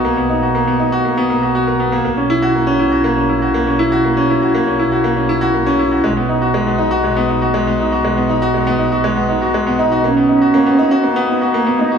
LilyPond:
<<
  \new Staff \with { instrumentName = "Cello" } { \time 4/4 \key fis \mixolydian \tempo 4 = 120 r1 | r1 | r1 | r1 |
r2. r8 dis'8 | cis'2 b4 ais8 dis'8 | }
  \new Staff \with { instrumentName = "Grand piano" } { \time 4/4 \key fis \mixolydian ais16 b16 dis'16 fis'16 ais16 b16 dis'16 fis'16 ais16 b16 ais16 fis'16 fis'16 ais'16 b16 ais16 | ais16 cis'16 e'16 fis'16 ais16 cis'16 e'16 fis'16 ais16 cis'16 e'16 fis'16 ais16 cis'16 e'16 fis'16 | ais16 cis'16 e'16 fis'16 ais16 cis'16 e'16 fis'16 ais16 cis'16 e'16 fis'16 ais16 cis'16 e'16 fis'16 | gis16 b16 dis'16 fis'16 gis16 b16 dis'16 fis'16 gis16 b16 dis'16 fis'16 gis16 b16 dis'16 fis'16 |
gis16 b16 dis'16 fis'16 gis16 b16 dis'16 fis'16 gis16 b16 dis'16 fis'16 gis16 b16 dis'16 fis'16 | ais16 b16 dis'16 fis'16 ais16 b16 dis'16 fis'16 ais16 b16 dis'16 fis'16 ais16 b16 dis'16 fis'16 | }
  \new Staff \with { instrumentName = "Double bass section" } { \clef bass \time 4/4 \key fis \mixolydian b,,1 | b,,1~ | b,,1 | b,,1~ |
b,,1 | r1 | }
>>